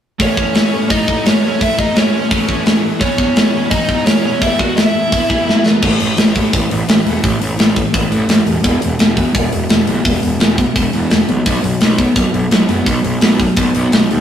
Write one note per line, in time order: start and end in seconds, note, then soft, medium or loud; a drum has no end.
0.19 0.36 A2 medium
0.19 0.37 E3 medium
0.19 0.37 A3 medium
0.19 0.87 C#4 medium
0.19 0.90 C#5 medium
0.19 kick loud
0.19 open hi-hat medium
0.37 0.55 A2 medium
0.37 0.55 E3 medium
0.37 0.56 A3 medium
0.37 kick medium
0.55 0.72 A2 medium
0.55 0.73 E3 medium
0.55 0.73 A3 medium
0.55 snare medium
0.55 open hi-hat medium
0.72 0.88 A2 medium
0.72 0.90 E3 medium
0.72 0.89 A3 medium
0.90 1.06 A2 medium
0.90 1.08 E3 medium
0.90 1.07 A3 medium
0.90 1.24 D#4 medium
0.90 1.26 D#5 medium
0.90 kick loud
0.90 open hi-hat medium
1.07 1.22 A2 medium
1.07 1.24 E3 medium
1.07 1.24 A3 medium
1.07 kick medium
1.24 1.40 A2 medium
1.24 1.42 E3 loud
1.24 1.41 A3 medium
1.24 1.42 C#5 medium
1.24 snare loud
1.24 open hi-hat medium
1.28 1.43 C#4 medium
1.41 1.57 A2 medium
1.41 1.59 E3 medium
1.41 1.58 A3 medium
1.41 1.61 C#5 medium
1.46 1.61 C#4 medium
1.58 1.76 A2 medium
1.58 1.77 E3 medium
1.58 1.77 A3 medium
1.58 1.77 E5 medium
1.58 kick loud
1.58 open hi-hat medium
1.64 1.78 E4 medium
1.77 1.94 A2 medium
1.77 1.95 E3 medium
1.77 1.95 A3 medium
1.77 1.96 D#4 medium
1.77 1.96 D#5 medium
1.77 kick medium
1.95 2.10 A2 loud
1.95 2.12 E3 medium
1.95 2.12 A3 loud
1.95 2.80 C#5 medium
1.95 snare medium
1.95 open hi-hat medium
1.99 2.81 C#4 medium
2.11 2.28 A2 medium
2.11 2.30 E3 medium
2.11 2.30 A3 medium
2.30 2.45 A2 medium
2.30 2.47 E3 medium
2.30 2.47 A3 medium
2.30 kick loud
2.30 open hi-hat medium
2.47 2.64 A2 medium
2.47 2.66 E3 medium
2.47 2.65 A3 medium
2.47 kick medium
2.65 2.81 A2 medium
2.65 2.83 E3 medium
2.65 2.83 A3 medium
2.65 snare loud
2.65 open hi-hat soft
2.83 2.99 A2 medium
2.83 3.01 E3 medium
2.83 3.00 A3 medium
3.00 3.17 E2 medium
3.00 3.17 B2 medium
3.00 3.19 E3 medium
3.00 3.68 C#4 medium
3.00 3.70 C#5 medium
3.00 kick loud
3.00 open hi-hat soft
3.18 3.34 E2 medium
3.18 3.34 B2 medium
3.18 3.36 E3 medium
3.18 kick medium
3.35 3.53 E2 medium
3.35 3.52 B2 medium
3.35 3.53 E3 medium
3.35 snare loud
3.35 open hi-hat soft
3.53 3.69 E2 medium
3.53 3.70 B2 medium
3.53 3.71 E3 medium
3.70 3.88 E2 medium
3.70 3.89 B2 medium
3.70 3.89 E3 loud
3.70 4.05 D#4 medium
3.70 4.05 D#5 medium
3.70 kick loud
3.70 open hi-hat medium
3.89 4.05 E2 medium
3.89 4.05 B2 medium
3.89 4.07 E3 medium
3.89 kick medium
4.06 4.23 E2 medium
4.06 4.23 B2 loud
4.06 4.25 E3 loud
4.06 4.23 C#4 medium
4.06 4.22 C#5 medium
4.06 snare loud
4.06 open hi-hat medium
4.23 4.40 E2 medium
4.23 4.41 B2 medium
4.23 4.41 E3 medium
4.23 4.41 C#4 medium
4.23 4.41 C#5 medium
4.41 4.58 E2 medium
4.41 4.58 B2 medium
4.41 4.58 E3 medium
4.41 4.59 E4 medium
4.41 4.59 E5 medium
4.41 kick loud
4.41 open hi-hat medium
4.59 4.75 E2 medium
4.59 4.75 B2 medium
4.59 4.76 E3 medium
4.59 4.76 F#4 medium
4.59 4.76 F#5 medium
4.59 kick medium
4.76 4.93 E2 medium
4.76 4.93 B2 loud
4.76 4.94 E3 medium
4.76 5.61 E4 medium
4.76 5.60 E5 medium
4.76 snare loud
4.76 open hi-hat medium
4.94 5.10 E2 medium
4.94 5.11 B2 medium
4.94 5.11 E3 medium
5.11 5.27 E2 medium
5.11 5.28 B2 medium
5.11 5.28 E3 loud
5.11 kick loud
5.11 open hi-hat medium
5.29 5.45 E2 medium
5.29 5.46 B2 medium
5.29 5.46 E3 medium
5.29 kick medium
5.46 5.63 E2 medium
5.46 5.63 B2 medium
5.46 5.64 E3 loud
5.46 snare medium
5.64 5.81 E2 medium
5.64 5.81 B2 medium
5.64 5.81 E3 medium
5.64 snare medium
5.82 5.93 A1 medium
5.82 5.99 A2 medium
5.82 5.99 E3 medium
5.82 5.99 A3 medium
5.82 kick loud
5.82 crash loud
6.00 6.11 A1 medium
6.00 6.16 A2 medium
6.00 6.16 E3 medium
6.00 open hi-hat medium
6.17 6.39 A1 medium
6.17 6.33 A2 medium
6.17 6.33 E3 medium
6.17 snare medium
6.17 open hi-hat medium
6.35 6.52 A2 medium
6.35 6.52 E3 medium
6.35 6.52 A3 medium
6.35 kick medium
6.35 open hi-hat medium
6.53 6.64 A1 medium
6.53 6.69 A2 medium
6.53 6.69 E3 medium
6.53 kick loud
6.53 open hi-hat loud
6.70 6.81 A1 medium
6.70 6.86 A2 medium
6.70 6.86 E3 medium
6.70 open hi-hat medium
6.88 6.99 A1 medium
6.88 7.04 A2 medium
6.88 7.04 E3 medium
6.88 snare loud
6.88 open hi-hat medium
7.06 7.17 E1 medium
7.06 7.22 A2 medium
7.06 7.22 E3 medium
7.06 7.23 A3 loud
7.06 open hi-hat medium
7.23 7.34 A1 medium
7.23 7.39 A2 medium
7.23 7.39 E3 medium
7.23 kick loud
7.23 open hi-hat medium
7.40 7.52 A1 medium
7.40 7.56 A2 medium
7.40 7.56 E3 medium
7.40 open hi-hat medium
7.58 7.80 A1 medium
7.58 7.74 A2 medium
7.58 7.75 E3 medium
7.58 7.75 A3 medium
7.58 snare loud
7.58 open hi-hat medium
7.75 7.91 A2 medium
7.75 7.92 E3 medium
7.75 kick medium
7.75 open hi-hat medium
7.93 8.05 A1 medium
7.93 8.09 A2 medium
7.93 8.09 E3 medium
7.93 kick loud
7.93 open hi-hat medium
8.10 8.21 A1 medium
8.10 8.26 A2 medium
8.10 8.27 E3 medium
8.10 8.28 A3 medium
8.10 open hi-hat medium
8.28 8.39 A1 medium
8.28 8.44 A2 medium
8.28 8.44 E3 medium
8.28 snare loud
8.28 open hi-hat medium
8.46 8.57 E1 medium
8.46 8.62 A2 medium
8.46 8.62 E3 medium
8.46 open hi-hat medium
8.63 8.75 E1 medium
8.63 8.80 E2 medium
8.63 8.80 B2 medium
8.63 8.80 E3 medium
8.63 kick loud
8.63 open hi-hat medium
8.81 8.94 E1 medium
8.81 8.97 E2 medium
8.81 8.97 B2 medium
8.81 open hi-hat medium
8.99 9.21 E1 medium
8.99 9.15 E2 medium
8.99 9.15 B2 medium
8.99 snare loud
8.99 open hi-hat medium
9.17 9.32 E2 medium
9.17 9.33 B2 medium
9.17 9.34 E3 medium
9.17 kick medium
9.17 open hi-hat medium
9.33 9.45 E1 medium
9.33 9.50 E2 medium
9.33 9.50 B2 medium
9.33 kick loud
9.33 open hi-hat medium
9.52 9.63 E1 medium
9.52 9.68 E2 medium
9.52 9.68 B2 medium
9.52 open hi-hat medium
9.69 9.81 E1 medium
9.69 9.85 E2 medium
9.69 9.85 B2 medium
9.69 snare loud
9.69 open hi-hat medium
9.86 9.98 B1 medium
9.86 10.03 E2 medium
9.86 10.03 B2 medium
9.86 10.04 E3 loud
9.86 open hi-hat medium
10.04 10.16 E1 medium
10.04 10.20 E2 medium
10.04 10.20 B2 medium
10.04 kick loud
10.04 open hi-hat medium
10.21 10.34 E1 medium
10.21 10.38 E2 medium
10.21 10.38 B2 medium
10.21 open hi-hat medium
10.39 10.62 E1 medium
10.39 10.56 E2 medium
10.39 10.56 B2 medium
10.39 10.57 E3 medium
10.39 snare loud
10.39 open hi-hat medium
10.58 10.74 E2 medium
10.58 10.74 B2 medium
10.58 kick medium
10.58 open hi-hat medium
10.75 10.87 E1 medium
10.75 10.91 E2 medium
10.75 10.91 B2 medium
10.75 kick loud
10.75 open hi-hat medium
10.93 11.04 E1 medium
10.93 11.09 E2 medium
10.93 11.09 B2 medium
10.93 11.10 E3 medium
10.93 open hi-hat medium
11.10 11.22 E1 medium
11.10 11.26 E2 medium
11.10 11.26 B2 medium
11.10 snare loud
11.10 open hi-hat medium
11.28 11.40 B1 medium
11.28 11.44 E2 medium
11.28 11.44 B2 medium
11.28 open hi-hat medium
11.45 11.57 B1 medium
11.45 11.62 B2 medium
11.45 11.62 F#3 medium
11.45 11.63 B3 medium
11.45 kick loud
11.45 open hi-hat medium
11.64 11.75 B1 medium
11.64 11.79 B2 medium
11.64 11.80 F#3 medium
11.64 open hi-hat medium
11.81 12.03 B1 medium
11.81 11.96 B2 medium
11.81 11.97 F#3 medium
11.81 snare loud
11.81 open hi-hat medium
11.98 12.14 B2 medium
11.98 12.15 F#3 medium
11.98 12.15 B3 medium
11.98 kick medium
11.98 open hi-hat medium
12.16 12.27 B1 medium
12.16 12.32 B2 medium
12.16 12.32 F#3 medium
12.16 kick loud
12.16 open hi-hat medium
12.33 12.45 B1 medium
12.33 12.49 B2 medium
12.33 12.50 F#3 medium
12.33 open hi-hat soft
12.51 12.62 B1 medium
12.51 12.67 B2 medium
12.51 12.67 F#3 medium
12.51 snare loud
12.51 open hi-hat medium
12.68 12.80 F#1 medium
12.68 12.84 B2 medium
12.68 12.85 F#3 loud
12.68 12.86 B3 loud
12.68 open hi-hat medium
12.85 12.98 B1 medium
12.85 13.02 B2 medium
12.85 13.02 F#3 medium
12.85 kick loud
12.85 open hi-hat medium
13.03 13.15 B1 medium
13.03 13.19 B2 medium
13.03 13.20 F#3 medium
13.03 open hi-hat medium
13.20 13.44 B1 medium
13.20 13.37 B2 loud
13.20 13.38 F#3 medium
13.20 13.39 B3 loud
13.20 snare loud
13.20 open hi-hat medium
13.38 13.55 B2 medium
13.38 13.55 F#3 medium
13.38 kick medium
13.38 open hi-hat medium
13.57 13.68 B1 loud
13.57 13.73 B2 medium
13.57 13.73 F#3 medium
13.57 kick loud
13.57 open hi-hat medium
13.75 13.86 B1 medium
13.75 13.92 B2 medium
13.75 13.92 F#3 medium
13.75 13.92 B3 medium
13.75 open hi-hat medium
13.92 14.04 B1 medium
13.92 14.09 B2 medium
13.92 14.09 F#3 medium
13.92 snare loud
13.92 open hi-hat medium
14.10 14.21 D#2 medium
14.10 14.21 B2 medium
14.10 14.21 F#3 medium
14.10 open hi-hat medium